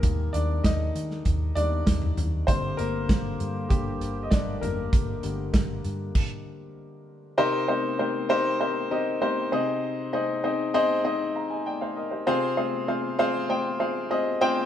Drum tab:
CC |----------------|----------------|--------x-------|----------------|
HH |x-x-x-x-x-x-x-x-|x-x-x-x-x-x-x-x-|x-x-x-x---------|----------------|
SD |----o--o----o---|----o-------o---|----o-----------|----------------|
FT |-------------oo-|--------------o-|----------------|----------------|
BD |o---o---o---o---|o---o---o---o---|o---o---o-------|----------------|

CC |----------------|----------------|
HH |----------------|----------------|
SD |----------------|----------------|
FT |----------------|----------------|
BD |----------------|----------------|